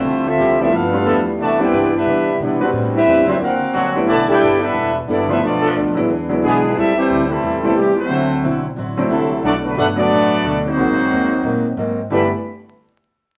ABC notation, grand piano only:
X:1
M:4/4
L:1/8
Q:"Swing" 1/4=179
K:G
V:1 name="Grand piano"
z3 [=F,A,B,DE] z [G,A,B,D=F]3 | z [G,B,CDE] z4 z [G,B,CDF]- | [G,B,CDF]2 z [F,_B,CD=F] z3 [G,A,=B,DE] | z6 z [=F,A,B,D=F]- |
[=F,A,B,D=F]2 z [^F,_A,B,DE] z [F,^G,B,DE]3 | z4 z [G,A,B,CE] z2 | z4 z [F,A,CDE] z2 | z3 [F,A,B,DF]3 z2 |
[_A,_B,C_E_G]3 z4 z | [A,B,DEG] z6 z |]